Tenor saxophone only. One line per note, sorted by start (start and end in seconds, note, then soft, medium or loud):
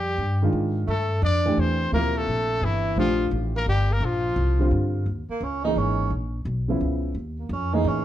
0.00 0.47 G3 medium
0.87 1.20 A3 medium
1.22 1.60 D4 medium
1.58 1.92 C4 medium
1.93 2.17 A#3 medium
2.15 2.64 A3 medium
2.62 2.97 E3 medium
2.98 3.30 F3 medium
3.56 3.67 A#3 medium
3.68 3.92 G3 medium
3.91 4.05 A#3 medium
4.03 4.72 F3 medium
5.30 5.45 A#3 medium
5.43 5.63 C#4 medium
5.64 5.79 D#4 medium
5.77 6.11 C#4 medium
7.39 7.54 A#3 soft
7.53 7.75 C#4 medium
7.73 7.89 D#4 medium
7.88 8.05 C#4 medium